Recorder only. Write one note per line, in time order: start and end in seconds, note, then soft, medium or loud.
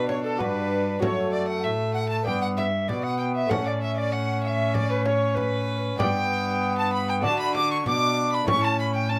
0.08 0.14 C#5 medium
0.24 0.41 A4 medium
0.39 1.02 B4 medium
1.02 1.34 C#5 medium
1.33 1.48 D5 medium
1.49 1.62 F#5 medium
1.63 1.70 E5 medium
1.95 2.01 F#5 medium
2.11 2.17 A5 medium
2.26 2.41 G5 loud
2.41 2.47 F#5 medium
2.58 2.90 E5 medium
2.88 3.05 D5 medium
3.04 3.21 F#5 medium
3.20 3.35 G5 medium
3.36 3.51 E5 medium
3.50 3.69 F#5 loud
3.68 3.82 D5 medium
3.83 4.00 E5 medium
3.98 4.14 D5 medium
4.12 4.44 F#5 loud
4.44 4.76 E5 medium
4.44 4.48 F#5 medium
4.74 4.90 D5 loud
4.90 5.07 B4 medium
5.06 5.36 C#5 medium
5.35 5.77 B4 loud
5.99 6.73 G5 loud
6.78 6.93 A5 medium
6.94 7.11 B5 loud
7.10 7.25 G5 loud
7.25 7.40 A5 loud
7.42 7.55 B5 loud
7.56 7.71 D6 loud
7.73 7.87 C#6 loud
7.88 8.36 D6 loud
8.35 8.48 B5 loud
8.48 8.66 C#6 loud
8.64 8.79 A5 loud
8.80 8.94 B5 loud
8.94 9.11 G5 medium
9.09 9.19 A5 loud